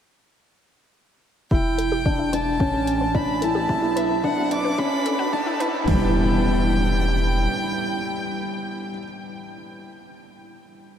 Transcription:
1.51 sub bass E1, synth arpeggio sound E4, felt piano E4, violin G5, kick, riser
1.78 synth arpeggio sound A4, closed hi-hat
1.92 synth arpeggio sound G4
2.06 felt piano D4, kick
2.19 synth arpeggio sound E4
2.33 felt piano D4, synth arpeggio sound B4, violin A5, closed hi-hat
2.60 sub bass A1, synth arpeggio sound C#4, felt piano C#4, kick
2.74 synth arpeggio sound G4
2.87 closed hi-hat
3.01 synth arpeggio sound B4
3.14 felt piano D4, synth arpeggio sound E4, violin B5, kick
3.42 felt piano E4, synth arpeggio sound A4, violin A5, closed hi-hat
3.55 synth arpeggio sound G4
3.69 sub bass B1, felt piano E4, kick
3.82 synth arpeggio sound E4
3.96 synth arpeggio sound B4, violin E5, closed hi-hat
4.24 synth arpeggio sound D4, felt piano D4, violin F#5, kick
4.37 synth arpeggio sound F#4
4.51 felt piano D4, violin D6, closed hi-hat
4.64 synth arpeggio sound B4
4.78 sub bass F#1, felt piano C#4, synth arpeggio sound E4, violin B5, kick
5.05 synth arpeggio sound A4, closed hi-hat
5.19 synth arpeggio sound F#4
5.33 felt piano D4, violin A5, kick
5.46 synth arpeggio sound E4
5.60 felt piano E4, synth arpeggio sound B4, closed hi-hat
5.87 sub bass E1, felt piano E3, synth arpeggio sound E4, violin G5, kick, floor tom, open hi-hat, impact
5.92 felt piano G3
5.96 felt piano B3
6.00 felt piano E4

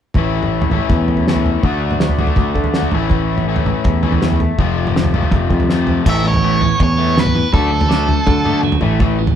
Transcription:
0.14 picked electric bass A1, distorted electric guitar A2 E3 A3 C#4 E4, kick, floor tom
0.43 mid tom
0.62 floor tom
0.70 picked electric bass A1, distorted electric guitar E3 A3 C#4 E4, floor tom, mid tom
0.74 distorted electric guitar A2
0.89 picked electric bass E2, kick, floor tom
1.08 floor tom
1.17 floor tom
1.27 distorted electric guitar A2 E3 A3 C#4 E4, snare
1.36 floor tom
1.46 floor tom
1.63 picked electric bass D2, distorted electric guitar D3 A3 D4 F#4, kick, floor tom
1.91 mid tom
2.00 snare
2.09 floor tom
2.19 distorted electric guitar D3 A3 D4 F#4, floor tom, mid tom
2.27 floor tom
2.36 picked electric bass D2, kick, floor tom, mid tom
2.55 picked electric bass D3, kick, floor tom
2.64 floor tom
2.74 distorted electric guitar D3 A3 D4 F#4, snare
2.82 floor tom
2.92 picked electric bass A1, distorted electric guitar A2 E3 A3 C#4 E4, floor tom
3.10 kick, floor tom
3.38 mid tom
3.47 distorted electric guitar A2 E3 A3 C#4 E4
3.56 floor tom
3.65 picked electric bass A1, floor tom, mid tom
3.85 picked electric bass E2, kick, floor tom
4.03 distorted electric guitar A2 E3 A3 C#4 E4, floor tom
4.12 floor tom
4.22 snare
4.32 floor tom
4.40 floor tom
4.58 picked electric bass F1, distorted electric guitar F2 C3 F3 A3 C4 F4, kick, floor tom
4.87 mid tom
4.96 snare
5.04 floor tom
5.13 distorted electric guitar F2 C3 F3 A3 C4 F4, floor tom, mid tom
5.23 floor tom
5.31 picked electric bass F1, kick, floor tom, mid tom
5.50 picked electric bass F2, kick, floor tom
5.60 floor tom
5.69 distorted electric guitar F2 C3 F3 A3 C4 F4, snare
5.87 floor tom
6.06 picked electric bass A1, distorted electric guitar A2 E3 A3, lead electric guitar E5, kick, floor tom, crash
6.24 distorted electric guitar A2 E3, overdriven electric guitar B3
6.28 lead electric guitar C#5
6.34 floor tom
6.44 distorted electric guitar A2 E3 A3
6.61 distorted electric guitar A2 E3, overdriven electric guitar B3, floor tom
6.80 picked electric bass E2, distorted electric guitar A2 E3, lead electric guitar C#5, kick, floor tom
6.97 distorted electric guitar A2 E3 A3, overdriven electric guitar B3
7.17 distorted electric guitar A2 E3, lead electric guitar B4, snare
7.26 floor tom, mid tom
7.35 distorted electric guitar A2 E3, mid tom
7.52 picked electric bass D2, distorted electric guitar D3 A3 D4, overdriven electric guitar F#3, lead electric guitar A4, kick, floor tom
7.71 distorted electric guitar D3 A3
7.81 floor tom
7.88 distorted electric guitar D3 A3 D4, overdriven electric guitar F#3, snare
8.08 distorted electric guitar D3 A3, floor tom
8.26 distorted electric guitar D3 A3, picked electric bass D3, overdriven electric guitar F#3, kick, floor tom
8.44 distorted electric guitar D3 A3 D4, mid tom
8.62 distorted electric guitar D3 A3, overdriven electric guitar F#3, mid tom
8.72 floor tom
8.81 picked electric bass A1, distorted electric guitar A2 E3 A3, mid tom
9.00 distorted electric guitar A2 E3 A3, kick, floor tom
9.19 distorted electric guitar A2 E3, overdriven electric guitar B3
9.27 floor tom

